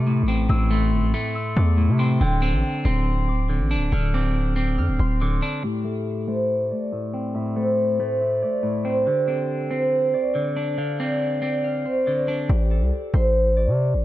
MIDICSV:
0, 0, Header, 1, 4, 480
1, 0, Start_track
1, 0, Key_signature, 0, "minor"
1, 0, Tempo, 428571
1, 554, Time_signature, 4, 2, 24, 8
1, 15735, End_track
2, 0, Start_track
2, 0, Title_t, "Harp"
2, 0, Program_c, 0, 46
2, 0, Note_on_c, 0, 79, 91
2, 0, Note_on_c, 0, 81, 79
2, 0, Note_on_c, 0, 84, 81
2, 0, Note_on_c, 0, 86, 78
2, 373, Note_off_c, 0, 79, 0
2, 496, Note_off_c, 0, 81, 0
2, 554, Note_on_c, 0, 88, 105
2, 789, Note_off_c, 0, 84, 0
2, 793, Note_on_c, 0, 84, 81
2, 1198, Note_off_c, 0, 86, 0
2, 1269, Note_off_c, 0, 84, 0
2, 1273, Note_on_c, 0, 84, 86
2, 1509, Note_off_c, 0, 88, 0
2, 1514, Note_on_c, 0, 88, 85
2, 1753, Note_on_c, 0, 86, 81
2, 2229, Note_off_c, 0, 84, 0
2, 2233, Note_on_c, 0, 84, 91
2, 2474, Note_on_c, 0, 79, 102
2, 2715, Note_on_c, 0, 81, 75
2, 2787, Note_off_c, 0, 88, 0
2, 3117, Note_off_c, 0, 86, 0
2, 3189, Note_off_c, 0, 84, 0
2, 3194, Note_on_c, 0, 84, 83
2, 3673, Note_on_c, 0, 86, 87
2, 4213, Note_off_c, 0, 79, 0
2, 4337, Note_off_c, 0, 81, 0
2, 4394, Note_on_c, 0, 89, 110
2, 4632, Note_off_c, 0, 86, 0
2, 4636, Note_on_c, 0, 86, 91
2, 4656, Note_off_c, 0, 84, 0
2, 5110, Note_off_c, 0, 86, 0
2, 5115, Note_on_c, 0, 86, 82
2, 5350, Note_off_c, 0, 89, 0
2, 5355, Note_on_c, 0, 89, 89
2, 5594, Note_on_c, 0, 84, 79
2, 5831, Note_off_c, 0, 86, 0
2, 5835, Note_on_c, 0, 86, 84
2, 6315, Note_on_c, 0, 67, 86
2, 6555, Note_on_c, 0, 69, 72
2, 6585, Note_off_c, 0, 89, 0
2, 7036, Note_on_c, 0, 72, 71
2, 7057, Note_off_c, 0, 84, 0
2, 7200, Note_off_c, 0, 86, 0
2, 7513, Note_on_c, 0, 74, 75
2, 8234, Note_on_c, 0, 76, 93
2, 8469, Note_off_c, 0, 72, 0
2, 8474, Note_on_c, 0, 72, 75
2, 8949, Note_off_c, 0, 72, 0
2, 8952, Note_off_c, 0, 67, 0
2, 8953, Note_on_c, 0, 72, 81
2, 9015, Note_off_c, 0, 69, 0
2, 9189, Note_off_c, 0, 76, 0
2, 9194, Note_on_c, 0, 76, 80
2, 9429, Note_off_c, 0, 74, 0
2, 9434, Note_on_c, 0, 74, 81
2, 9910, Note_off_c, 0, 72, 0
2, 9914, Note_on_c, 0, 72, 89
2, 10155, Note_on_c, 0, 67, 96
2, 10396, Note_on_c, 0, 69, 73
2, 10868, Note_off_c, 0, 72, 0
2, 10873, Note_on_c, 0, 72, 75
2, 11123, Note_off_c, 0, 76, 0
2, 11348, Note_off_c, 0, 74, 0
2, 11353, Note_on_c, 0, 74, 87
2, 12073, Note_on_c, 0, 77, 105
2, 12310, Note_off_c, 0, 74, 0
2, 12314, Note_on_c, 0, 74, 89
2, 12790, Note_off_c, 0, 74, 0
2, 12792, Note_off_c, 0, 67, 0
2, 12794, Note_on_c, 0, 74, 81
2, 12855, Note_off_c, 0, 69, 0
2, 13030, Note_off_c, 0, 77, 0
2, 13034, Note_on_c, 0, 77, 82
2, 13090, Note_off_c, 0, 72, 0
2, 13273, Note_on_c, 0, 72, 77
2, 13510, Note_off_c, 0, 74, 0
2, 13514, Note_on_c, 0, 74, 82
2, 13994, Note_on_c, 0, 67, 89
2, 14233, Note_on_c, 0, 69, 76
2, 14709, Note_off_c, 0, 72, 0
2, 14714, Note_on_c, 0, 72, 76
2, 14898, Note_off_c, 0, 77, 0
2, 15188, Note_off_c, 0, 74, 0
2, 15193, Note_on_c, 0, 74, 78
2, 15735, Note_off_c, 0, 67, 0
2, 15735, Note_off_c, 0, 69, 0
2, 15735, Note_off_c, 0, 72, 0
2, 15735, Note_off_c, 0, 74, 0
2, 15735, End_track
3, 0, Start_track
3, 0, Title_t, "Clean electric guitar"
3, 0, Program_c, 1, 27
3, 0, Note_on_c, 1, 57, 86
3, 76, Note_on_c, 1, 45, 84
3, 313, Note_on_c, 1, 60, 93
3, 536, Note_off_c, 1, 45, 0
3, 550, Note_on_c, 1, 45, 89
3, 552, Note_off_c, 1, 57, 0
3, 791, Note_on_c, 1, 57, 86
3, 1263, Note_off_c, 1, 57, 0
3, 1277, Note_on_c, 1, 57, 93
3, 1513, Note_off_c, 1, 60, 0
3, 1752, Note_off_c, 1, 45, 0
3, 1986, Note_on_c, 1, 45, 85
3, 2230, Note_on_c, 1, 60, 88
3, 2470, Note_off_c, 1, 45, 0
3, 2472, Note_off_c, 1, 60, 0
3, 2475, Note_off_c, 1, 57, 0
3, 2477, Note_on_c, 1, 50, 93
3, 2710, Note_on_c, 1, 60, 89
3, 3178, Note_off_c, 1, 60, 0
3, 3192, Note_on_c, 1, 60, 93
3, 3675, Note_off_c, 1, 50, 0
3, 3913, Note_on_c, 1, 50, 79
3, 4153, Note_on_c, 1, 62, 97
3, 4380, Note_off_c, 1, 50, 0
3, 4393, Note_off_c, 1, 60, 0
3, 4394, Note_on_c, 1, 50, 92
3, 4638, Note_on_c, 1, 60, 91
3, 5095, Note_off_c, 1, 60, 0
3, 5108, Note_on_c, 1, 60, 86
3, 5353, Note_off_c, 1, 62, 0
3, 5594, Note_off_c, 1, 50, 0
3, 5842, Note_on_c, 1, 50, 78
3, 6075, Note_on_c, 1, 62, 92
3, 6311, Note_off_c, 1, 60, 0
3, 6313, Note_on_c, 1, 45, 88
3, 6315, Note_off_c, 1, 62, 0
3, 6318, Note_off_c, 1, 50, 0
3, 6546, Note_on_c, 1, 57, 84
3, 7017, Note_off_c, 1, 57, 0
3, 7031, Note_on_c, 1, 57, 81
3, 7513, Note_off_c, 1, 45, 0
3, 7756, Note_on_c, 1, 45, 80
3, 7993, Note_on_c, 1, 60, 87
3, 8216, Note_off_c, 1, 45, 0
3, 8230, Note_on_c, 1, 45, 82
3, 8232, Note_off_c, 1, 57, 0
3, 8471, Note_on_c, 1, 57, 85
3, 8943, Note_off_c, 1, 57, 0
3, 8957, Note_on_c, 1, 57, 85
3, 9193, Note_off_c, 1, 60, 0
3, 9432, Note_off_c, 1, 45, 0
3, 9666, Note_on_c, 1, 45, 85
3, 9910, Note_on_c, 1, 60, 84
3, 10150, Note_off_c, 1, 45, 0
3, 10152, Note_off_c, 1, 60, 0
3, 10155, Note_off_c, 1, 57, 0
3, 10157, Note_on_c, 1, 50, 91
3, 10391, Note_on_c, 1, 60, 82
3, 10858, Note_off_c, 1, 60, 0
3, 10871, Note_on_c, 1, 60, 90
3, 11355, Note_off_c, 1, 50, 0
3, 11592, Note_on_c, 1, 50, 80
3, 11833, Note_on_c, 1, 62, 88
3, 12059, Note_off_c, 1, 50, 0
3, 12072, Note_on_c, 1, 50, 85
3, 12073, Note_off_c, 1, 60, 0
3, 12318, Note_on_c, 1, 60, 88
3, 12775, Note_off_c, 1, 60, 0
3, 12789, Note_on_c, 1, 60, 81
3, 13033, Note_off_c, 1, 62, 0
3, 13273, Note_off_c, 1, 50, 0
3, 13522, Note_on_c, 1, 50, 75
3, 13756, Note_on_c, 1, 62, 87
3, 13991, Note_off_c, 1, 60, 0
3, 13995, Note_off_c, 1, 62, 0
3, 13998, Note_off_c, 1, 50, 0
3, 15735, End_track
4, 0, Start_track
4, 0, Title_t, "808-style bass"
4, 0, Program_c, 2, 38
4, 0, Note_on_c, 2, 48, 104
4, 253, Note_on_c, 2, 33, 104
4, 270, Note_off_c, 2, 48, 0
4, 539, Note_off_c, 2, 33, 0
4, 554, Note_on_c, 2, 33, 104
4, 1033, Note_on_c, 2, 31, 100
4, 1050, Note_off_c, 2, 33, 0
4, 1153, Note_on_c, 2, 33, 102
4, 1170, Note_off_c, 2, 31, 0
4, 1268, Note_off_c, 2, 33, 0
4, 1754, Note_on_c, 2, 40, 107
4, 2114, Note_on_c, 2, 48, 101
4, 2131, Note_off_c, 2, 40, 0
4, 2456, Note_off_c, 2, 48, 0
4, 2473, Note_on_c, 2, 26, 108
4, 2833, Note_on_c, 2, 33, 104
4, 2850, Note_off_c, 2, 26, 0
4, 2948, Note_off_c, 2, 33, 0
4, 3194, Note_on_c, 2, 26, 109
4, 4034, Note_on_c, 2, 33, 107
4, 4051, Note_off_c, 2, 26, 0
4, 4214, Note_on_c, 2, 26, 99
4, 4231, Note_off_c, 2, 33, 0
4, 4385, Note_off_c, 2, 26, 0
4, 4394, Note_on_c, 2, 26, 107
4, 5354, Note_on_c, 2, 41, 105
4, 5371, Note_off_c, 2, 26, 0
4, 5474, Note_on_c, 2, 26, 101
4, 5491, Note_off_c, 2, 41, 0
4, 5588, Note_off_c, 2, 26, 0
4, 5594, Note_on_c, 2, 26, 104
4, 6055, Note_off_c, 2, 26, 0
4, 13994, Note_on_c, 2, 33, 102
4, 14354, Note_on_c, 2, 36, 102
4, 14371, Note_off_c, 2, 33, 0
4, 14468, Note_off_c, 2, 36, 0
4, 14714, Note_on_c, 2, 33, 107
4, 15314, Note_on_c, 2, 48, 101
4, 15331, Note_off_c, 2, 33, 0
4, 15614, Note_on_c, 2, 33, 103
4, 15631, Note_off_c, 2, 48, 0
4, 15735, Note_off_c, 2, 33, 0
4, 15735, End_track
0, 0, End_of_file